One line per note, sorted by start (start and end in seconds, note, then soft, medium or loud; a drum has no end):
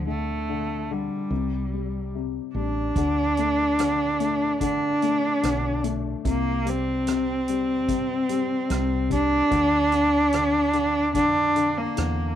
0.00 1.08 D2 medium
0.00 0.07 D3 medium
0.07 0.48 D3 soft
0.07 0.94 A3 medium
0.49 0.89 D3 soft
0.91 1.30 D3 soft
0.91 2.15 G3 medium
1.30 2.38 C2 medium
1.30 2.13 C3 soft
1.74 2.54 G3 soft
2.15 2.95 C3 soft
2.54 2.90 A1 medium
2.54 2.95 G3 soft
2.54 4.57 D4 medium
2.95 4.61 D2 medium
2.95 3.78 D3 medium
2.95 kick medium
2.95 closed hi-hat medium
3.37 4.18 A3 soft
3.37 closed hi-hat soft
3.79 4.59 D3 soft
3.79 cross-stick medium
3.79 closed hi-hat medium
4.20 5.01 A3 soft
4.20 closed hi-hat soft
4.61 5.32 A1 medium
4.61 5.41 D3 medium
4.61 5.81 D4 medium
4.61 kick medium
4.61 closed hi-hat medium
5.02 5.82 A3 soft
5.02 closed hi-hat soft
5.43 6.14 B1 medium
5.43 6.22 D3 soft
5.43 cross-stick medium
5.43 closed hi-hat medium
5.84 6.24 A3 soft
5.84 closed hi-hat soft
6.24 7.88 C2 medium
6.24 7.05 C3 medium
6.24 kick medium
6.24 closed hi-hat medium
6.29 6.71 A#3 medium
6.65 7.48 G3 soft
6.65 9.11 C4 medium
6.65 closed hi-hat medium
7.07 7.87 C3 medium
7.07 cross-stick medium
7.07 closed hi-hat medium
7.48 8.28 G3 soft
7.48 closed hi-hat soft
7.88 8.59 G2 medium
7.88 8.67 C3 medium
7.88 kick medium
7.88 closed hi-hat medium
8.29 9.09 G3 medium
8.29 closed hi-hat soft
8.69 9.41 C2 medium
8.69 9.49 C3 medium
8.69 cross-stick medium
8.69 closed hi-hat medium
9.10 9.50 G3 medium
9.10 11.12 D4 loud
9.10 kick medium
9.10 closed hi-hat soft
9.50 11.15 D2 medium
9.50 9.91 D3 medium
9.50 kick medium
9.50 closed hi-hat medium
9.92 10.33 D3 medium
9.92 closed hi-hat soft
10.33 10.72 D3 medium
10.33 cross-stick medium
10.33 closed hi-hat medium
10.73 11.14 D3 soft
10.73 closed hi-hat soft
11.15 11.86 F2 medium
11.15 11.54 D3 medium
11.15 11.79 D4 medium
11.15 kick medium
11.15 closed hi-hat medium
11.56 11.95 D3 soft
11.56 closed hi-hat soft
11.78 12.35 A#3 medium
11.97 12.35 E2 medium
11.97 12.35 D3 soft
11.97 cross-stick medium
11.97 closed hi-hat medium